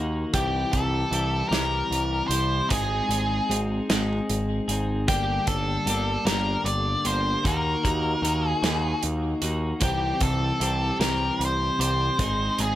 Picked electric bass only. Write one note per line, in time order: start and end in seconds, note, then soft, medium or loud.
0.00 0.24 D#2 medium
0.34 0.64 C2 medium
0.73 1.03 C2 medium
1.11 1.42 C2 medium
1.51 1.81 C2 medium
1.91 2.21 C2 medium
2.29 2.60 C2 medium
2.71 3.01 G#1 medium
3.09 3.39 G#1 medium
3.49 3.79 G#1 medium
3.90 4.19 G#1 medium
4.30 4.59 G#1 medium
4.68 5.08 G#1 medium
5.08 5.38 G1 medium
5.47 5.77 G1 medium
5.86 6.16 G1 medium
6.25 6.55 G1 medium
6.64 6.95 G1 medium
7.05 7.35 G1 medium
7.44 7.75 D#2 medium
7.84 8.14 D#2 medium
8.22 8.53 D#2 medium
8.63 8.93 D#2 medium
9.04 9.33 D#2 medium
9.42 9.72 D#2 medium
9.81 10.11 C2 medium
10.21 10.51 C2 medium
10.60 10.90 C2 medium
11.00 11.30 C2 medium
11.39 11.69 C2 medium
11.79 12.09 C2 medium
12.19 12.49 G#1 medium
12.59 12.75 G#1 medium